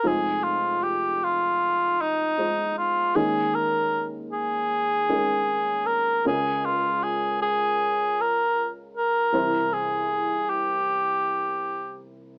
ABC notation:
X:1
M:4/4
L:1/8
Q:1/4=78
K:Fm
V:1 name="Cor anglais"
A F G F2 E2 F | A B z A4 B | A F A A2 B z B- | B A2 G4 z |]
V:2 name="Upright piano"
[A,EFc]6 [A,EFc]2 | [A,DEB]4- [A,DEB] [A,DEB]3 | [A,DFB]8 | [=E,C=Ec]8 |]
V:3 name="Upright piano" clef=bass
[F,,,F,,]8 | [E,,E,]8 | [D,,D,]8 | [C,,C,]8 |]